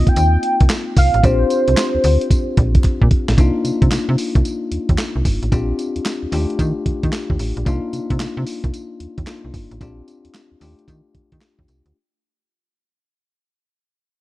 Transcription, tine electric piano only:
0.00 1.19 A#3 medium
0.00 1.20 C4 medium
0.00 1.20 D#4 medium
0.00 1.20 F4 medium
1.23 3.34 C4 medium
1.23 3.34 D4 medium
1.23 3.34 F4 medium
1.23 3.35 G4 medium
3.37 5.48 A#3 medium
3.37 5.48 D4 medium
3.37 5.49 D#4 medium
3.37 5.49 F4 medium
5.52 6.32 C4 medium
5.52 6.31 D4 medium
5.52 6.32 F4 medium
5.52 6.33 G4 medium
6.32 7.63 A3 medium
6.32 7.64 D4 medium
6.32 7.64 F4 medium
6.32 7.65 G4 medium
7.65 9.23 A#3 medium
7.65 9.24 D4 medium
7.65 9.24 D#4 medium
7.65 9.25 F4 medium
9.27 9.81 A#3 medium
9.27 9.80 D4 medium
9.27 9.81 D#4 medium
9.27 9.80 F4 medium
9.81 10.61 C4 medium
9.81 10.60 D4 medium
9.81 10.61 F4 medium
9.81 10.62 G4 medium
10.60 11.92 A3 medium
10.60 11.92 D4 medium
10.60 11.93 F4 medium
10.60 11.93 G4 medium

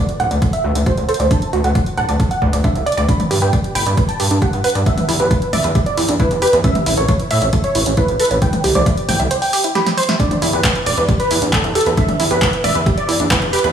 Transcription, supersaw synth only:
0.00 0.11 D5 medium
0.20 0.44 F#5 medium
0.53 0.78 E5 medium
0.86 1.03 C5 medium
1.09 1.25 C5 medium
1.31 1.55 A5 medium
1.64 1.89 F#5 medium
1.98 2.22 A5 medium
2.31 2.56 F#5 medium
2.64 2.81 E5 medium
2.86 3.03 D5 medium
3.09 3.33 B5 medium
3.42 3.67 G5 medium
3.75 4.00 B5 medium
4.09 4.33 A5 medium
4.42 4.58 F#5 medium
4.64 4.81 F#5 medium
4.86 5.11 E5 medium
5.20 5.44 B4 medium
5.53 5.78 E5 medium
5.86 6.11 D5 medium
6.20 6.36 B4 medium
6.42 6.58 B4 medium
6.64 6.89 E5 loud
6.98 7.22 C#5 loud
7.31 7.55 E5 loud
7.64 7.89 C#5 medium
7.97 8.14 B4 medium
8.20 8.36 B4 medium
8.42 8.66 G5 loud
8.75 9.00 D5 medium
9.09 9.33 G5 medium
9.42 9.66 G5 medium
9.75 9.92 B5 medium
9.97 10.14 C6 medium
10.20 10.44 D5 loud
10.53 10.78 B4 medium
10.87 11.11 D5 medium
11.20 11.44 B4 medium
11.53 11.70 A4 medium
11.75 11.92 A4 medium
11.98 12.22 E5 loud
12.31 12.55 B4 medium
12.64 12.89 E5 medium
12.98 13.22 D5 medium
13.31 13.47 B4 medium
13.53 13.69 B4 medium

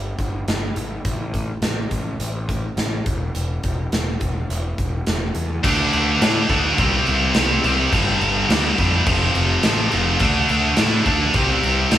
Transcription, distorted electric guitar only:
5.63 6.20 D3 medium
5.63 6.21 A3 medium
5.63 6.21 D4 loud
6.21 6.48 D3 medium
6.21 6.49 A3 loud
6.21 6.49 D4 medium
6.49 6.77 D3 medium
6.49 6.77 A3 medium
6.49 6.77 D4 medium
6.79 7.34 C3 medium
6.79 7.34 G3 loud
6.79 7.35 C4 loud
7.35 7.63 C3 medium
7.35 7.63 G3 medium
7.35 7.63 C4 medium
7.64 7.91 C3 medium
7.64 7.91 G3 medium
7.64 7.91 C4 medium
7.91 8.48 G2 medium
7.91 8.49 D3 medium
7.91 8.49 G3 medium
8.49 8.78 G2 medium
8.49 8.78 D3 medium
8.49 8.78 G3 loud
8.79 9.05 G2 medium
8.79 9.06 D3 medium
8.79 9.06 G3 loud
9.06 9.63 F2 medium
9.06 9.63 C3 medium
9.06 9.63 F3 loud
9.64 9.90 F2 medium
9.64 9.90 C3 medium
9.64 9.91 F3 medium
9.91 10.19 F2 medium
9.91 10.19 C3 medium
9.91 10.19 F3 medium
10.20 10.76 D3 medium
10.20 10.76 A3 medium
10.20 10.76 D4 loud
10.77 11.04 D3 medium
10.77 11.04 A3 medium
10.77 11.04 D4 loud
11.05 11.33 D3 medium
11.05 11.33 A3 medium
11.05 11.33 D4 loud
11.35 11.90 C3 loud
11.35 11.90 G3 loud
11.35 11.91 C4 loud
11.91 11.98 C3 medium
11.91 11.98 G3 medium
11.91 11.98 C4 medium

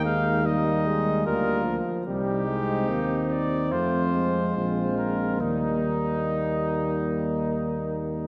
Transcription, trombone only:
0.00 0.44 A#3 soft
0.44 0.87 A#3 soft
0.85 1.24 G#3 soft
1.25 1.66 G3 soft
1.65 2.06 F3 soft
2.07 2.49 G3 soft
2.47 2.91 G#3 soft
2.89 3.43 A#3 soft
3.71 4.15 A3 soft
4.13 5.41 G#3 soft
5.42 8.27 G3 soft

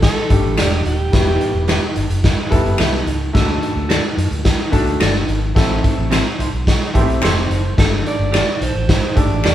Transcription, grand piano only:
0.30 0.80 G3 medium
0.30 0.80 A3 medium
0.30 0.81 D4 medium
0.30 0.81 G4 medium
1.12 1.79 G3 medium
1.12 1.79 B3 medium
1.12 1.80 E4 medium
1.12 1.20 F#4 medium
1.20 1.83 G4 medium
2.50 3.01 G3 medium
2.50 3.01 B3 medium
2.50 3.01 E4 medium
2.50 3.01 A4 medium
3.33 4.00 A3 medium
3.33 4.01 D4 medium
3.33 4.01 F#4 medium
3.33 4.01 A4 medium
4.71 5.22 A3 medium
4.71 5.22 D4 medium
4.71 5.23 F#4 medium
4.71 5.23 A4 medium
5.55 6.22 A3 medium
5.55 6.22 C4 medium
5.55 6.23 E4 medium
5.55 6.23 A4 medium
6.94 7.44 A3 medium
6.94 7.01 B3 medium
6.94 7.45 E4 medium
6.94 7.45 G4 medium
7.01 7.48 C4 medium
7.77 8.44 A3 medium
7.77 8.44 D4 medium
7.77 8.45 G4 medium
7.77 8.45 A4 medium
9.15 9.55 A3 medium
9.15 9.55 D4 medium
9.15 9.55 G4 medium
9.15 9.55 A4 medium

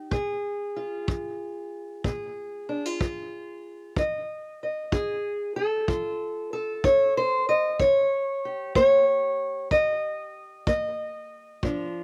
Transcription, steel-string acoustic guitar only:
0.00 0.12 G4 medium
0.11 0.69 A#2 medium
0.11 2.04 G#4 medium
0.76 2.69 F4 medium
1.08 1.65 F3 medium
2.05 2.62 A#2 medium
2.05 3.93 G#4 medium
2.69 2.86 D4 medium
2.86 3.97 F4 soft
3.02 3.59 F3 medium
3.98 4.55 F3 medium
3.98 4.63 D#5 soft
4.63 6.84 D#5 soft
4.92 5.50 F4 medium
4.92 5.56 G#4 medium
5.56 6.52 A4 medium
5.88 6.46 F3 medium
5.88 6.83 F4 soft
6.53 7.49 A4 medium
6.84 7.42 F4 medium
6.84 7.17 C#5 loud
7.17 7.48 C5 loud
7.49 7.80 D#5 medium
7.80 8.38 D#3 medium
7.80 8.75 C#5 loud
8.45 11.60 G4 soft
8.76 9.34 A#3 medium
8.76 9.71 C#5 loud
9.71 10.29 D#3 medium
9.71 10.66 D#5 medium
10.67 11.24 A#3 medium
10.67 11.63 D#5 medium
11.63 12.04 A#2 medium
11.63 12.04 F3 medium
11.63 12.04 D4 medium
11.63 12.04 F4 soft

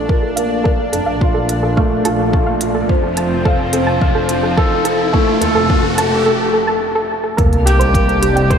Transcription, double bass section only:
0.00 0.71 A#1 loud
0.93 1.02 F1 medium
1.07 1.97 A#1 loud
2.05 2.81 A#1 loud
2.89 5.20 F1 loud
5.41 5.51 D#2 medium
5.55 6.26 F1 loud
7.39 8.58 C2 loud

